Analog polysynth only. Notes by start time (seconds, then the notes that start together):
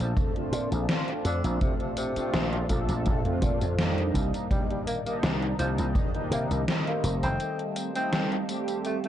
Already playing: A3 C4 D4 A4
0.35 A3 C4 D4 F4
0.88 A3 C4 D4 F4
1.61 A3 C4 D4 F4
2.16 A3 C4 D4 F4
2.69 A3 C4 D4 A4
3.25 A3 C4 D4 F4
3.78 G3 A#3 D4 D#4
4.50 G3 A#3 D4 D#4
5.05 G3 A#3 D4 D#4
5.58 G3 A#3 D4 D#4
6.13 G3 A#3 D4 D#4
6.67 G3 A3 C4 D#4
7.39 G3 A3 C4 D#4
7.95 G3 A3 C4 D#4
8.48 G3 A3 C4 G4
9.03 G3 A3 C4 D#4